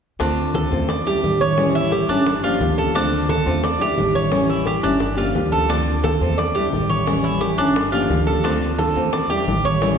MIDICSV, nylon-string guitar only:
0, 0, Header, 1, 3, 480
1, 0, Start_track
1, 0, Key_signature, -1, "minor"
1, 0, Tempo, 343446
1, 282, Time_signature, 4, 2, 24, 8
1, 13948, End_track
2, 0, Start_track
2, 0, Title_t, "Nylon-string guitar"
2, 0, Program_c, 0, 24
2, 266, Note_on_c, 0, 50, 74
2, 277, Note_on_c, 0, 57, 70
2, 282, Note_on_c, 0, 60, 79
2, 287, Note_on_c, 0, 65, 89
2, 979, Note_off_c, 0, 65, 0
2, 985, Note_off_c, 0, 50, 0
2, 987, Note_off_c, 0, 60, 0
2, 990, Note_off_c, 0, 57, 0
2, 996, Note_on_c, 0, 65, 64
2, 1004, Note_on_c, 0, 60, 54
2, 1016, Note_on_c, 0, 57, 55
2, 1229, Note_off_c, 0, 65, 0
2, 1232, Note_off_c, 0, 57, 0
2, 1232, Note_off_c, 0, 60, 0
2, 1474, Note_on_c, 0, 64, 62
2, 1485, Note_on_c, 0, 62, 60
2, 1493, Note_on_c, 0, 55, 51
2, 1701, Note_off_c, 0, 55, 0
2, 1708, Note_off_c, 0, 62, 0
2, 1708, Note_off_c, 0, 64, 0
2, 1714, Note_on_c, 0, 50, 42
2, 1718, Note_on_c, 0, 55, 46
2, 1725, Note_on_c, 0, 62, 43
2, 1731, Note_on_c, 0, 64, 51
2, 2182, Note_off_c, 0, 50, 0
2, 2182, Note_off_c, 0, 55, 0
2, 2188, Note_on_c, 0, 52, 74
2, 2192, Note_off_c, 0, 64, 0
2, 2194, Note_off_c, 0, 62, 0
2, 2199, Note_on_c, 0, 55, 62
2, 2202, Note_on_c, 0, 61, 79
2, 2209, Note_on_c, 0, 64, 78
2, 2905, Note_off_c, 0, 52, 0
2, 2905, Note_off_c, 0, 64, 0
2, 2911, Note_off_c, 0, 55, 0
2, 2912, Note_off_c, 0, 61, 0
2, 2922, Note_on_c, 0, 64, 63
2, 2936, Note_on_c, 0, 61, 65
2, 2944, Note_on_c, 0, 55, 57
2, 3152, Note_off_c, 0, 64, 0
2, 3159, Note_off_c, 0, 61, 0
2, 3163, Note_off_c, 0, 55, 0
2, 3404, Note_on_c, 0, 67, 60
2, 3414, Note_on_c, 0, 62, 60
2, 3416, Note_on_c, 0, 58, 58
2, 3422, Note_on_c, 0, 53, 54
2, 3618, Note_off_c, 0, 53, 0
2, 3626, Note_off_c, 0, 58, 0
2, 3633, Note_off_c, 0, 67, 0
2, 3635, Note_on_c, 0, 53, 42
2, 3638, Note_off_c, 0, 62, 0
2, 3643, Note_on_c, 0, 58, 44
2, 3654, Note_on_c, 0, 62, 47
2, 3658, Note_on_c, 0, 67, 48
2, 4108, Note_off_c, 0, 53, 0
2, 4112, Note_off_c, 0, 58, 0
2, 4116, Note_on_c, 0, 50, 72
2, 4118, Note_off_c, 0, 62, 0
2, 4120, Note_off_c, 0, 67, 0
2, 4124, Note_on_c, 0, 57, 75
2, 4127, Note_on_c, 0, 60, 75
2, 4138, Note_on_c, 0, 65, 78
2, 4817, Note_off_c, 0, 65, 0
2, 4824, Note_off_c, 0, 60, 0
2, 4829, Note_off_c, 0, 50, 0
2, 4832, Note_off_c, 0, 57, 0
2, 4834, Note_on_c, 0, 65, 68
2, 4841, Note_on_c, 0, 60, 60
2, 4853, Note_on_c, 0, 57, 61
2, 5068, Note_off_c, 0, 65, 0
2, 5070, Note_off_c, 0, 57, 0
2, 5071, Note_off_c, 0, 60, 0
2, 5305, Note_on_c, 0, 64, 71
2, 5313, Note_on_c, 0, 62, 55
2, 5320, Note_on_c, 0, 55, 53
2, 5540, Note_off_c, 0, 55, 0
2, 5543, Note_off_c, 0, 64, 0
2, 5544, Note_off_c, 0, 62, 0
2, 5547, Note_on_c, 0, 50, 43
2, 5556, Note_on_c, 0, 55, 50
2, 5560, Note_on_c, 0, 62, 43
2, 5567, Note_on_c, 0, 64, 58
2, 6013, Note_off_c, 0, 50, 0
2, 6014, Note_off_c, 0, 55, 0
2, 6018, Note_on_c, 0, 52, 78
2, 6024, Note_off_c, 0, 64, 0
2, 6028, Note_off_c, 0, 62, 0
2, 6031, Note_on_c, 0, 55, 76
2, 6034, Note_on_c, 0, 61, 75
2, 6041, Note_on_c, 0, 64, 74
2, 6735, Note_off_c, 0, 64, 0
2, 6739, Note_off_c, 0, 52, 0
2, 6743, Note_off_c, 0, 61, 0
2, 6746, Note_off_c, 0, 55, 0
2, 6752, Note_on_c, 0, 64, 59
2, 6759, Note_on_c, 0, 61, 58
2, 6768, Note_on_c, 0, 55, 54
2, 6986, Note_off_c, 0, 64, 0
2, 6990, Note_off_c, 0, 61, 0
2, 6992, Note_off_c, 0, 55, 0
2, 7220, Note_on_c, 0, 67, 59
2, 7232, Note_on_c, 0, 62, 58
2, 7234, Note_on_c, 0, 58, 61
2, 7243, Note_on_c, 0, 53, 45
2, 7448, Note_off_c, 0, 53, 0
2, 7454, Note_off_c, 0, 58, 0
2, 7460, Note_off_c, 0, 62, 0
2, 7460, Note_off_c, 0, 67, 0
2, 7465, Note_on_c, 0, 53, 41
2, 7471, Note_on_c, 0, 58, 48
2, 7477, Note_on_c, 0, 62, 46
2, 7480, Note_on_c, 0, 67, 48
2, 7934, Note_off_c, 0, 53, 0
2, 7939, Note_on_c, 0, 50, 74
2, 7942, Note_off_c, 0, 58, 0
2, 7945, Note_off_c, 0, 62, 0
2, 7948, Note_on_c, 0, 57, 72
2, 7950, Note_off_c, 0, 67, 0
2, 7951, Note_on_c, 0, 60, 79
2, 7957, Note_on_c, 0, 65, 77
2, 8659, Note_off_c, 0, 65, 0
2, 8660, Note_off_c, 0, 50, 0
2, 8664, Note_off_c, 0, 57, 0
2, 8666, Note_off_c, 0, 60, 0
2, 8676, Note_on_c, 0, 65, 58
2, 8685, Note_on_c, 0, 60, 59
2, 8696, Note_on_c, 0, 57, 55
2, 8907, Note_off_c, 0, 57, 0
2, 8908, Note_off_c, 0, 65, 0
2, 8913, Note_off_c, 0, 60, 0
2, 9155, Note_on_c, 0, 64, 65
2, 9168, Note_on_c, 0, 62, 62
2, 9176, Note_on_c, 0, 55, 53
2, 9387, Note_off_c, 0, 55, 0
2, 9388, Note_off_c, 0, 64, 0
2, 9394, Note_off_c, 0, 62, 0
2, 9395, Note_on_c, 0, 50, 44
2, 9403, Note_on_c, 0, 55, 47
2, 9411, Note_on_c, 0, 62, 41
2, 9415, Note_on_c, 0, 64, 43
2, 9859, Note_off_c, 0, 55, 0
2, 9864, Note_off_c, 0, 50, 0
2, 9869, Note_on_c, 0, 52, 76
2, 9871, Note_off_c, 0, 64, 0
2, 9876, Note_off_c, 0, 62, 0
2, 9876, Note_on_c, 0, 55, 69
2, 9882, Note_on_c, 0, 61, 67
2, 9888, Note_on_c, 0, 64, 79
2, 10577, Note_off_c, 0, 64, 0
2, 10585, Note_off_c, 0, 52, 0
2, 10588, Note_off_c, 0, 55, 0
2, 10589, Note_off_c, 0, 61, 0
2, 10593, Note_on_c, 0, 64, 59
2, 10605, Note_on_c, 0, 61, 66
2, 10612, Note_on_c, 0, 55, 55
2, 10827, Note_off_c, 0, 64, 0
2, 10833, Note_off_c, 0, 61, 0
2, 10834, Note_off_c, 0, 55, 0
2, 11077, Note_on_c, 0, 67, 66
2, 11086, Note_on_c, 0, 62, 62
2, 11094, Note_on_c, 0, 58, 58
2, 11097, Note_on_c, 0, 53, 50
2, 11297, Note_off_c, 0, 53, 0
2, 11302, Note_off_c, 0, 58, 0
2, 11306, Note_off_c, 0, 62, 0
2, 11309, Note_off_c, 0, 67, 0
2, 11314, Note_on_c, 0, 53, 42
2, 11319, Note_on_c, 0, 58, 49
2, 11322, Note_on_c, 0, 62, 46
2, 11334, Note_on_c, 0, 67, 56
2, 11785, Note_off_c, 0, 53, 0
2, 11790, Note_off_c, 0, 58, 0
2, 11791, Note_on_c, 0, 50, 82
2, 11792, Note_off_c, 0, 62, 0
2, 11797, Note_off_c, 0, 67, 0
2, 11798, Note_on_c, 0, 57, 75
2, 11805, Note_on_c, 0, 60, 75
2, 11809, Note_on_c, 0, 65, 75
2, 12500, Note_off_c, 0, 65, 0
2, 12506, Note_off_c, 0, 50, 0
2, 12509, Note_off_c, 0, 57, 0
2, 12509, Note_off_c, 0, 60, 0
2, 12516, Note_on_c, 0, 65, 75
2, 12525, Note_on_c, 0, 60, 61
2, 12534, Note_on_c, 0, 57, 51
2, 12749, Note_off_c, 0, 65, 0
2, 12753, Note_off_c, 0, 60, 0
2, 12758, Note_off_c, 0, 57, 0
2, 13004, Note_on_c, 0, 64, 59
2, 13009, Note_on_c, 0, 62, 53
2, 13023, Note_on_c, 0, 55, 53
2, 13215, Note_off_c, 0, 55, 0
2, 13225, Note_off_c, 0, 62, 0
2, 13225, Note_on_c, 0, 50, 46
2, 13232, Note_on_c, 0, 55, 52
2, 13233, Note_off_c, 0, 64, 0
2, 13242, Note_on_c, 0, 62, 43
2, 13247, Note_on_c, 0, 64, 53
2, 13697, Note_off_c, 0, 55, 0
2, 13700, Note_off_c, 0, 50, 0
2, 13706, Note_on_c, 0, 52, 76
2, 13710, Note_off_c, 0, 64, 0
2, 13712, Note_off_c, 0, 62, 0
2, 13714, Note_on_c, 0, 55, 68
2, 13722, Note_on_c, 0, 61, 78
2, 13727, Note_on_c, 0, 64, 78
2, 13948, Note_off_c, 0, 52, 0
2, 13948, Note_off_c, 0, 55, 0
2, 13948, Note_off_c, 0, 61, 0
2, 13948, Note_off_c, 0, 64, 0
2, 13948, End_track
3, 0, Start_track
3, 0, Title_t, "Muted nylon-string guitar strokes"
3, 1233, Note_on_c, 9, 29, 50
3, 1372, Note_off_c, 9, 29, 0
3, 3164, Note_on_c, 9, 29, 50
3, 3304, Note_off_c, 9, 29, 0
3, 5073, Note_on_c, 9, 29, 54
3, 5212, Note_off_c, 9, 29, 0
3, 6993, Note_on_c, 9, 29, 47
3, 7133, Note_off_c, 9, 29, 0
3, 8910, Note_on_c, 9, 29, 47
3, 9049, Note_off_c, 9, 29, 0
3, 10837, Note_on_c, 9, 29, 54
3, 10977, Note_off_c, 9, 29, 0
3, 12764, Note_on_c, 9, 29, 48
3, 12904, Note_off_c, 9, 29, 0
3, 13948, End_track
0, 0, End_of_file